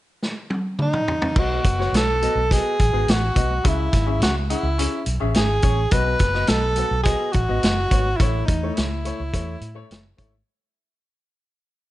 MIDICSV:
0, 0, Header, 1, 5, 480
1, 0, Start_track
1, 0, Tempo, 569260
1, 1148, Time_signature, 4, 2, 24, 8
1, 10034, End_track
2, 0, Start_track
2, 0, Title_t, "Tenor saxophone"
2, 0, Program_c, 0, 66
2, 689, Note_on_c, 0, 63, 84
2, 1175, Note_on_c, 0, 66, 92
2, 1188, Note_off_c, 0, 63, 0
2, 1644, Note_off_c, 0, 66, 0
2, 1658, Note_on_c, 0, 69, 92
2, 2126, Note_on_c, 0, 68, 99
2, 2139, Note_off_c, 0, 69, 0
2, 2619, Note_on_c, 0, 66, 84
2, 2631, Note_off_c, 0, 68, 0
2, 3095, Note_on_c, 0, 64, 86
2, 3108, Note_off_c, 0, 66, 0
2, 3560, Note_off_c, 0, 64, 0
2, 3565, Note_on_c, 0, 66, 85
2, 3671, Note_off_c, 0, 66, 0
2, 3799, Note_on_c, 0, 64, 79
2, 4245, Note_off_c, 0, 64, 0
2, 4529, Note_on_c, 0, 68, 91
2, 4990, Note_on_c, 0, 71, 99
2, 5003, Note_off_c, 0, 68, 0
2, 5472, Note_on_c, 0, 69, 91
2, 5485, Note_off_c, 0, 71, 0
2, 5927, Note_off_c, 0, 69, 0
2, 5932, Note_on_c, 0, 68, 92
2, 6172, Note_on_c, 0, 66, 97
2, 6184, Note_off_c, 0, 68, 0
2, 6885, Note_on_c, 0, 64, 93
2, 6898, Note_off_c, 0, 66, 0
2, 7130, Note_on_c, 0, 63, 76
2, 7142, Note_off_c, 0, 64, 0
2, 7373, Note_on_c, 0, 64, 79
2, 7386, Note_off_c, 0, 63, 0
2, 8575, Note_off_c, 0, 64, 0
2, 10034, End_track
3, 0, Start_track
3, 0, Title_t, "Upright piano"
3, 0, Program_c, 1, 0
3, 1146, Note_on_c, 1, 59, 68
3, 1149, Note_on_c, 1, 66, 58
3, 1151, Note_on_c, 1, 75, 73
3, 1152, Note_on_c, 1, 47, 58
3, 1329, Note_off_c, 1, 59, 0
3, 1331, Note_off_c, 1, 66, 0
3, 1332, Note_off_c, 1, 75, 0
3, 1510, Note_on_c, 1, 59, 60
3, 1513, Note_on_c, 1, 66, 58
3, 1515, Note_on_c, 1, 73, 69
3, 1692, Note_off_c, 1, 59, 0
3, 1693, Note_off_c, 1, 66, 0
3, 1694, Note_off_c, 1, 73, 0
3, 1840, Note_off_c, 1, 47, 0
3, 1874, Note_on_c, 1, 66, 64
3, 1875, Note_on_c, 1, 59, 71
3, 1877, Note_on_c, 1, 75, 69
3, 1994, Note_off_c, 1, 66, 0
3, 1995, Note_off_c, 1, 59, 0
3, 1996, Note_off_c, 1, 75, 0
3, 2115, Note_on_c, 1, 59, 64
3, 2118, Note_on_c, 1, 75, 66
3, 2120, Note_on_c, 1, 66, 61
3, 2296, Note_off_c, 1, 59, 0
3, 2297, Note_off_c, 1, 75, 0
3, 2298, Note_off_c, 1, 66, 0
3, 2472, Note_on_c, 1, 59, 67
3, 2474, Note_on_c, 1, 66, 59
3, 2474, Note_on_c, 1, 68, 77
3, 2655, Note_off_c, 1, 59, 0
3, 2656, Note_off_c, 1, 66, 0
3, 2656, Note_off_c, 1, 68, 0
3, 2828, Note_on_c, 1, 59, 66
3, 2828, Note_on_c, 1, 66, 54
3, 2828, Note_on_c, 1, 75, 68
3, 2953, Note_off_c, 1, 59, 0
3, 2953, Note_off_c, 1, 66, 0
3, 2953, Note_off_c, 1, 75, 0
3, 3066, Note_on_c, 1, 49, 55
3, 3067, Note_on_c, 1, 61, 65
3, 3068, Note_on_c, 1, 68, 58
3, 3071, Note_on_c, 1, 76, 75
3, 3253, Note_off_c, 1, 61, 0
3, 3254, Note_off_c, 1, 68, 0
3, 3255, Note_off_c, 1, 76, 0
3, 3427, Note_on_c, 1, 61, 57
3, 3429, Note_on_c, 1, 68, 57
3, 3431, Note_on_c, 1, 76, 66
3, 3613, Note_off_c, 1, 61, 0
3, 3615, Note_off_c, 1, 68, 0
3, 3615, Note_off_c, 1, 76, 0
3, 3758, Note_off_c, 1, 49, 0
3, 3793, Note_on_c, 1, 68, 65
3, 3795, Note_on_c, 1, 61, 66
3, 3795, Note_on_c, 1, 78, 74
3, 3916, Note_off_c, 1, 68, 0
3, 3917, Note_off_c, 1, 61, 0
3, 3917, Note_off_c, 1, 78, 0
3, 4031, Note_on_c, 1, 61, 69
3, 4035, Note_on_c, 1, 68, 57
3, 4037, Note_on_c, 1, 76, 69
3, 4215, Note_off_c, 1, 61, 0
3, 4217, Note_off_c, 1, 68, 0
3, 4219, Note_off_c, 1, 76, 0
3, 4384, Note_on_c, 1, 61, 64
3, 4388, Note_on_c, 1, 76, 77
3, 4389, Note_on_c, 1, 68, 69
3, 4572, Note_off_c, 1, 61, 0
3, 4574, Note_off_c, 1, 68, 0
3, 4574, Note_off_c, 1, 76, 0
3, 4743, Note_on_c, 1, 61, 58
3, 4743, Note_on_c, 1, 68, 60
3, 4747, Note_on_c, 1, 73, 66
3, 4871, Note_off_c, 1, 61, 0
3, 4871, Note_off_c, 1, 68, 0
3, 4873, Note_off_c, 1, 73, 0
3, 4988, Note_on_c, 1, 59, 64
3, 4993, Note_on_c, 1, 66, 61
3, 4995, Note_on_c, 1, 47, 57
3, 4996, Note_on_c, 1, 75, 79
3, 5173, Note_off_c, 1, 59, 0
3, 5176, Note_off_c, 1, 66, 0
3, 5177, Note_off_c, 1, 75, 0
3, 5341, Note_on_c, 1, 59, 62
3, 5347, Note_on_c, 1, 66, 59
3, 5349, Note_on_c, 1, 75, 75
3, 5529, Note_off_c, 1, 59, 0
3, 5532, Note_off_c, 1, 66, 0
3, 5533, Note_off_c, 1, 75, 0
3, 5680, Note_off_c, 1, 47, 0
3, 5709, Note_on_c, 1, 59, 67
3, 5712, Note_on_c, 1, 66, 56
3, 5716, Note_on_c, 1, 69, 78
3, 5832, Note_off_c, 1, 59, 0
3, 5834, Note_off_c, 1, 66, 0
3, 5836, Note_off_c, 1, 69, 0
3, 5948, Note_on_c, 1, 66, 66
3, 5950, Note_on_c, 1, 75, 71
3, 5952, Note_on_c, 1, 59, 62
3, 6132, Note_off_c, 1, 66, 0
3, 6133, Note_off_c, 1, 75, 0
3, 6134, Note_off_c, 1, 59, 0
3, 6311, Note_on_c, 1, 59, 74
3, 6315, Note_on_c, 1, 66, 61
3, 6315, Note_on_c, 1, 75, 76
3, 6492, Note_off_c, 1, 59, 0
3, 6494, Note_off_c, 1, 66, 0
3, 6494, Note_off_c, 1, 75, 0
3, 6672, Note_on_c, 1, 59, 58
3, 6674, Note_on_c, 1, 66, 53
3, 6677, Note_on_c, 1, 73, 69
3, 6792, Note_off_c, 1, 59, 0
3, 6793, Note_off_c, 1, 66, 0
3, 6794, Note_off_c, 1, 73, 0
3, 6917, Note_on_c, 1, 45, 53
3, 6918, Note_on_c, 1, 64, 60
3, 6919, Note_on_c, 1, 57, 65
3, 6924, Note_on_c, 1, 73, 79
3, 7095, Note_off_c, 1, 57, 0
3, 7095, Note_off_c, 1, 64, 0
3, 7097, Note_off_c, 1, 73, 0
3, 7278, Note_on_c, 1, 57, 70
3, 7281, Note_on_c, 1, 64, 59
3, 7282, Note_on_c, 1, 73, 70
3, 7454, Note_off_c, 1, 57, 0
3, 7455, Note_off_c, 1, 64, 0
3, 7456, Note_off_c, 1, 73, 0
3, 7597, Note_off_c, 1, 45, 0
3, 7631, Note_on_c, 1, 57, 70
3, 7636, Note_on_c, 1, 64, 56
3, 7638, Note_on_c, 1, 73, 79
3, 7749, Note_off_c, 1, 57, 0
3, 7752, Note_off_c, 1, 64, 0
3, 7753, Note_off_c, 1, 73, 0
3, 7869, Note_on_c, 1, 57, 68
3, 7870, Note_on_c, 1, 64, 61
3, 7875, Note_on_c, 1, 73, 68
3, 8048, Note_off_c, 1, 57, 0
3, 8048, Note_off_c, 1, 64, 0
3, 8051, Note_off_c, 1, 73, 0
3, 8221, Note_on_c, 1, 57, 86
3, 8225, Note_on_c, 1, 64, 74
3, 8226, Note_on_c, 1, 73, 91
3, 8403, Note_off_c, 1, 57, 0
3, 8405, Note_off_c, 1, 64, 0
3, 8405, Note_off_c, 1, 73, 0
3, 8578, Note_on_c, 1, 57, 73
3, 8582, Note_on_c, 1, 64, 69
3, 8583, Note_on_c, 1, 73, 73
3, 8701, Note_off_c, 1, 57, 0
3, 8703, Note_off_c, 1, 64, 0
3, 8703, Note_off_c, 1, 73, 0
3, 10034, End_track
4, 0, Start_track
4, 0, Title_t, "Fingered electric bass"
4, 0, Program_c, 2, 33
4, 1146, Note_on_c, 2, 35, 77
4, 1332, Note_off_c, 2, 35, 0
4, 1386, Note_on_c, 2, 30, 76
4, 1573, Note_off_c, 2, 30, 0
4, 1623, Note_on_c, 2, 35, 82
4, 1904, Note_off_c, 2, 35, 0
4, 1985, Note_on_c, 2, 35, 76
4, 2173, Note_off_c, 2, 35, 0
4, 2359, Note_on_c, 2, 33, 72
4, 2450, Note_off_c, 2, 33, 0
4, 2463, Note_on_c, 2, 32, 80
4, 2560, Note_off_c, 2, 32, 0
4, 2589, Note_on_c, 2, 33, 90
4, 2776, Note_off_c, 2, 33, 0
4, 2832, Note_on_c, 2, 35, 79
4, 3018, Note_off_c, 2, 35, 0
4, 3078, Note_on_c, 2, 37, 96
4, 3262, Note_off_c, 2, 37, 0
4, 3317, Note_on_c, 2, 32, 86
4, 3538, Note_on_c, 2, 37, 79
4, 3551, Note_off_c, 2, 32, 0
4, 3822, Note_off_c, 2, 37, 0
4, 3904, Note_on_c, 2, 37, 77
4, 4094, Note_off_c, 2, 37, 0
4, 4271, Note_on_c, 2, 35, 82
4, 4366, Note_off_c, 2, 35, 0
4, 4400, Note_on_c, 2, 33, 79
4, 4491, Note_off_c, 2, 33, 0
4, 4518, Note_on_c, 2, 32, 89
4, 4702, Note_off_c, 2, 32, 0
4, 4750, Note_on_c, 2, 33, 84
4, 4937, Note_off_c, 2, 33, 0
4, 4986, Note_on_c, 2, 35, 92
4, 5174, Note_off_c, 2, 35, 0
4, 5228, Note_on_c, 2, 30, 77
4, 5415, Note_off_c, 2, 30, 0
4, 5472, Note_on_c, 2, 35, 91
4, 5749, Note_off_c, 2, 35, 0
4, 5827, Note_on_c, 2, 35, 88
4, 6014, Note_off_c, 2, 35, 0
4, 6189, Note_on_c, 2, 33, 89
4, 6283, Note_off_c, 2, 33, 0
4, 6315, Note_on_c, 2, 32, 83
4, 6406, Note_off_c, 2, 32, 0
4, 6435, Note_on_c, 2, 30, 79
4, 6618, Note_off_c, 2, 30, 0
4, 6670, Note_on_c, 2, 32, 77
4, 6854, Note_off_c, 2, 32, 0
4, 6915, Note_on_c, 2, 33, 99
4, 7097, Note_off_c, 2, 33, 0
4, 7153, Note_on_c, 2, 40, 81
4, 7335, Note_off_c, 2, 40, 0
4, 7403, Note_on_c, 2, 37, 77
4, 7673, Note_off_c, 2, 37, 0
4, 7756, Note_on_c, 2, 37, 81
4, 7844, Note_off_c, 2, 37, 0
4, 7871, Note_on_c, 2, 40, 81
4, 8053, Note_off_c, 2, 40, 0
4, 8103, Note_on_c, 2, 45, 81
4, 8287, Note_off_c, 2, 45, 0
4, 8353, Note_on_c, 2, 30, 80
4, 8533, Note_off_c, 2, 30, 0
4, 8591, Note_on_c, 2, 32, 94
4, 8771, Note_off_c, 2, 32, 0
4, 10034, End_track
5, 0, Start_track
5, 0, Title_t, "Drums"
5, 190, Note_on_c, 9, 38, 51
5, 275, Note_off_c, 9, 38, 0
5, 424, Note_on_c, 9, 48, 57
5, 508, Note_off_c, 9, 48, 0
5, 663, Note_on_c, 9, 47, 74
5, 748, Note_off_c, 9, 47, 0
5, 787, Note_on_c, 9, 45, 82
5, 871, Note_off_c, 9, 45, 0
5, 910, Note_on_c, 9, 43, 75
5, 995, Note_off_c, 9, 43, 0
5, 1027, Note_on_c, 9, 43, 85
5, 1111, Note_off_c, 9, 43, 0
5, 1147, Note_on_c, 9, 36, 101
5, 1147, Note_on_c, 9, 49, 71
5, 1231, Note_off_c, 9, 49, 0
5, 1232, Note_off_c, 9, 36, 0
5, 1388, Note_on_c, 9, 36, 86
5, 1392, Note_on_c, 9, 42, 69
5, 1472, Note_off_c, 9, 36, 0
5, 1476, Note_off_c, 9, 42, 0
5, 1523, Note_on_c, 9, 38, 35
5, 1607, Note_off_c, 9, 38, 0
5, 1637, Note_on_c, 9, 42, 76
5, 1645, Note_on_c, 9, 38, 104
5, 1721, Note_off_c, 9, 42, 0
5, 1729, Note_off_c, 9, 38, 0
5, 1875, Note_on_c, 9, 42, 60
5, 1960, Note_off_c, 9, 42, 0
5, 2117, Note_on_c, 9, 36, 90
5, 2124, Note_on_c, 9, 42, 96
5, 2201, Note_off_c, 9, 36, 0
5, 2208, Note_off_c, 9, 42, 0
5, 2356, Note_on_c, 9, 42, 54
5, 2358, Note_on_c, 9, 36, 72
5, 2440, Note_off_c, 9, 42, 0
5, 2443, Note_off_c, 9, 36, 0
5, 2598, Note_on_c, 9, 42, 74
5, 2609, Note_on_c, 9, 38, 111
5, 2683, Note_off_c, 9, 42, 0
5, 2694, Note_off_c, 9, 38, 0
5, 2832, Note_on_c, 9, 42, 62
5, 2834, Note_on_c, 9, 36, 75
5, 2917, Note_off_c, 9, 42, 0
5, 2918, Note_off_c, 9, 36, 0
5, 3076, Note_on_c, 9, 42, 81
5, 3077, Note_on_c, 9, 36, 106
5, 3160, Note_off_c, 9, 42, 0
5, 3161, Note_off_c, 9, 36, 0
5, 3313, Note_on_c, 9, 42, 71
5, 3314, Note_on_c, 9, 36, 88
5, 3323, Note_on_c, 9, 38, 32
5, 3398, Note_off_c, 9, 42, 0
5, 3399, Note_off_c, 9, 36, 0
5, 3407, Note_off_c, 9, 38, 0
5, 3555, Note_on_c, 9, 42, 82
5, 3563, Note_on_c, 9, 38, 90
5, 3639, Note_off_c, 9, 42, 0
5, 3647, Note_off_c, 9, 38, 0
5, 3795, Note_on_c, 9, 42, 62
5, 3879, Note_off_c, 9, 42, 0
5, 4038, Note_on_c, 9, 42, 92
5, 4122, Note_off_c, 9, 42, 0
5, 4266, Note_on_c, 9, 42, 61
5, 4350, Note_off_c, 9, 42, 0
5, 4506, Note_on_c, 9, 42, 76
5, 4516, Note_on_c, 9, 38, 99
5, 4590, Note_off_c, 9, 42, 0
5, 4601, Note_off_c, 9, 38, 0
5, 4741, Note_on_c, 9, 42, 58
5, 4749, Note_on_c, 9, 36, 76
5, 4825, Note_off_c, 9, 42, 0
5, 4833, Note_off_c, 9, 36, 0
5, 4984, Note_on_c, 9, 42, 80
5, 4991, Note_on_c, 9, 36, 98
5, 5068, Note_off_c, 9, 42, 0
5, 5075, Note_off_c, 9, 36, 0
5, 5221, Note_on_c, 9, 42, 62
5, 5228, Note_on_c, 9, 36, 85
5, 5230, Note_on_c, 9, 38, 31
5, 5305, Note_off_c, 9, 42, 0
5, 5313, Note_off_c, 9, 36, 0
5, 5314, Note_off_c, 9, 38, 0
5, 5346, Note_on_c, 9, 38, 33
5, 5431, Note_off_c, 9, 38, 0
5, 5457, Note_on_c, 9, 42, 88
5, 5465, Note_on_c, 9, 38, 99
5, 5541, Note_off_c, 9, 42, 0
5, 5549, Note_off_c, 9, 38, 0
5, 5697, Note_on_c, 9, 42, 63
5, 5781, Note_off_c, 9, 42, 0
5, 5946, Note_on_c, 9, 42, 92
5, 5951, Note_on_c, 9, 36, 87
5, 6031, Note_off_c, 9, 42, 0
5, 6035, Note_off_c, 9, 36, 0
5, 6180, Note_on_c, 9, 42, 52
5, 6194, Note_on_c, 9, 36, 74
5, 6264, Note_off_c, 9, 42, 0
5, 6278, Note_off_c, 9, 36, 0
5, 6432, Note_on_c, 9, 42, 80
5, 6443, Note_on_c, 9, 38, 102
5, 6516, Note_off_c, 9, 42, 0
5, 6527, Note_off_c, 9, 38, 0
5, 6672, Note_on_c, 9, 36, 76
5, 6672, Note_on_c, 9, 42, 66
5, 6756, Note_off_c, 9, 36, 0
5, 6756, Note_off_c, 9, 42, 0
5, 6913, Note_on_c, 9, 36, 107
5, 6913, Note_on_c, 9, 42, 81
5, 6997, Note_off_c, 9, 42, 0
5, 6998, Note_off_c, 9, 36, 0
5, 7153, Note_on_c, 9, 36, 92
5, 7153, Note_on_c, 9, 42, 67
5, 7237, Note_off_c, 9, 42, 0
5, 7238, Note_off_c, 9, 36, 0
5, 7393, Note_on_c, 9, 42, 85
5, 7401, Note_on_c, 9, 38, 94
5, 7477, Note_off_c, 9, 42, 0
5, 7485, Note_off_c, 9, 38, 0
5, 7632, Note_on_c, 9, 42, 69
5, 7716, Note_off_c, 9, 42, 0
5, 7872, Note_on_c, 9, 36, 91
5, 7874, Note_on_c, 9, 42, 97
5, 7956, Note_off_c, 9, 36, 0
5, 7959, Note_off_c, 9, 42, 0
5, 8107, Note_on_c, 9, 42, 55
5, 8191, Note_off_c, 9, 42, 0
5, 8354, Note_on_c, 9, 42, 82
5, 8365, Note_on_c, 9, 38, 112
5, 8438, Note_off_c, 9, 42, 0
5, 8449, Note_off_c, 9, 38, 0
5, 8587, Note_on_c, 9, 42, 66
5, 8588, Note_on_c, 9, 36, 75
5, 8671, Note_off_c, 9, 42, 0
5, 8672, Note_off_c, 9, 36, 0
5, 10034, End_track
0, 0, End_of_file